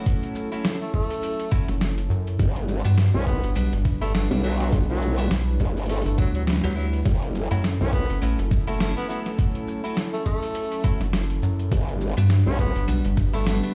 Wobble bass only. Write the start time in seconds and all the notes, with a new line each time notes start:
2.39 G1
3.14 B1
4.31 B1
4.89 B1
5.60 G1
7.06 F#1
7.80 B1
11.72 G1
12.46 B1